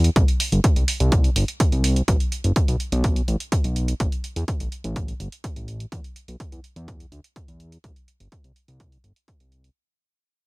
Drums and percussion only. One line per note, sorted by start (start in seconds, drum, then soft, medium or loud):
0.04 closed hi-hat soft
0.16 kick loud
0.16 closed hi-hat medium
0.28 closed hi-hat soft
0.40 open hi-hat loud
0.52 closed hi-hat soft
0.64 kick loud
0.64 closed hi-hat medium
0.76 closed hi-hat soft
0.88 open hi-hat medium
1.00 closed hi-hat soft
1.12 kick loud
1.12 closed hi-hat medium
1.24 closed hi-hat soft
1.36 open hi-hat loud
1.48 closed hi-hat soft
1.60 kick loud
1.60 closed hi-hat medium
1.72 closed hi-hat soft
1.84 open hi-hat medium
1.96 closed hi-hat soft
2.08 kick loud
2.08 closed hi-hat medium
2.20 closed hi-hat soft
2.32 closed hi-hat soft
2.44 closed hi-hat soft
2.56 kick loud
2.56 closed hi-hat medium
2.68 closed hi-hat soft
2.80 closed hi-hat soft
2.92 closed hi-hat soft
3.04 kick loud
3.04 closed hi-hat medium
3.16 closed hi-hat soft
3.28 closed hi-hat soft
3.40 closed hi-hat soft
3.52 kick loud
3.52 closed hi-hat medium
3.64 closed hi-hat soft
3.76 closed hi-hat soft
3.88 closed hi-hat soft
4.00 kick loud
4.00 closed hi-hat medium
4.12 closed hi-hat soft
4.24 closed hi-hat medium
4.36 closed hi-hat soft
4.48 kick loud
4.48 closed hi-hat medium
4.60 closed hi-hat soft
4.72 closed hi-hat soft
4.84 closed hi-hat soft
4.96 kick loud
4.96 closed hi-hat medium
5.08 closed hi-hat soft
5.20 closed hi-hat soft
5.32 closed hi-hat soft
5.44 kick loud
5.44 closed hi-hat medium
5.56 closed hi-hat soft
5.68 closed hi-hat soft
5.80 closed hi-hat soft
5.92 kick loud
5.92 closed hi-hat medium
6.04 closed hi-hat soft
6.16 closed hi-hat medium
6.28 closed hi-hat soft
6.40 kick loud
6.40 closed hi-hat medium
6.52 closed hi-hat soft
6.64 closed hi-hat soft
6.76 closed hi-hat soft
6.88 kick loud
6.88 closed hi-hat medium
7.00 closed hi-hat soft
7.12 closed hi-hat medium
7.24 closed hi-hat soft
7.36 kick loud
7.36 closed hi-hat medium
7.48 closed hi-hat soft
7.60 closed hi-hat soft
7.72 closed hi-hat soft
7.84 kick loud
7.84 closed hi-hat medium
7.96 closed hi-hat soft
8.08 closed hi-hat medium
8.20 closed hi-hat soft
8.32 kick loud
8.32 closed hi-hat medium
8.44 closed hi-hat soft
8.56 closed hi-hat medium
8.68 closed hi-hat soft
8.80 kick loud
8.80 closed hi-hat medium
8.92 closed hi-hat soft
9.04 closed hi-hat medium
9.16 closed hi-hat soft
9.28 kick loud
9.28 closed hi-hat medium
9.40 closed hi-hat soft
9.52 closed hi-hat medium
9.64 closed hi-hat soft